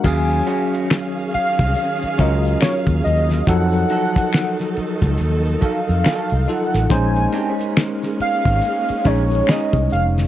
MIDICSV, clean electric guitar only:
0, 0, Header, 1, 2, 480
1, 0, Start_track
1, 0, Tempo, 857143
1, 27, Time_signature, 4, 2, 24, 8
1, 5755, End_track
2, 0, Start_track
2, 0, Title_t, "Clean electric guitar"
2, 0, Program_c, 0, 27
2, 262, Note_on_c, 0, 61, 92
2, 265, Note_on_c, 0, 66, 96
2, 270, Note_on_c, 0, 68, 88
2, 490, Note_off_c, 0, 61, 0
2, 491, Note_off_c, 0, 66, 0
2, 494, Note_off_c, 0, 68, 0
2, 1220, Note_on_c, 0, 61, 66
2, 1223, Note_on_c, 0, 66, 77
2, 1227, Note_on_c, 0, 68, 77
2, 1317, Note_off_c, 0, 61, 0
2, 1318, Note_off_c, 0, 66, 0
2, 1320, Note_off_c, 0, 68, 0
2, 2186, Note_on_c, 0, 63, 80
2, 2193, Note_on_c, 0, 66, 94
2, 2196, Note_on_c, 0, 69, 109
2, 2412, Note_off_c, 0, 63, 0
2, 2415, Note_off_c, 0, 66, 0
2, 2417, Note_off_c, 0, 69, 0
2, 3143, Note_on_c, 0, 63, 73
2, 3147, Note_on_c, 0, 66, 65
2, 3149, Note_on_c, 0, 69, 69
2, 3238, Note_off_c, 0, 63, 0
2, 3240, Note_off_c, 0, 66, 0
2, 3241, Note_off_c, 0, 69, 0
2, 3383, Note_on_c, 0, 63, 71
2, 3389, Note_on_c, 0, 66, 83
2, 3392, Note_on_c, 0, 69, 99
2, 3522, Note_off_c, 0, 63, 0
2, 3525, Note_off_c, 0, 66, 0
2, 3526, Note_off_c, 0, 69, 0
2, 4104, Note_on_c, 0, 60, 85
2, 4107, Note_on_c, 0, 62, 95
2, 4112, Note_on_c, 0, 67, 93
2, 4199, Note_off_c, 0, 60, 0
2, 4199, Note_on_c, 0, 61, 85
2, 4201, Note_off_c, 0, 67, 0
2, 4201, Note_on_c, 0, 68, 93
2, 4202, Note_off_c, 0, 62, 0
2, 4202, Note_on_c, 0, 63, 95
2, 4331, Note_off_c, 0, 61, 0
2, 4332, Note_off_c, 0, 63, 0
2, 4335, Note_off_c, 0, 68, 0
2, 5067, Note_on_c, 0, 61, 66
2, 5073, Note_on_c, 0, 63, 72
2, 5075, Note_on_c, 0, 68, 79
2, 5160, Note_off_c, 0, 61, 0
2, 5163, Note_off_c, 0, 63, 0
2, 5164, Note_off_c, 0, 68, 0
2, 5308, Note_on_c, 0, 61, 71
2, 5309, Note_on_c, 0, 63, 85
2, 5313, Note_on_c, 0, 68, 71
2, 5426, Note_off_c, 0, 61, 0
2, 5427, Note_off_c, 0, 63, 0
2, 5429, Note_off_c, 0, 68, 0
2, 5755, End_track
0, 0, End_of_file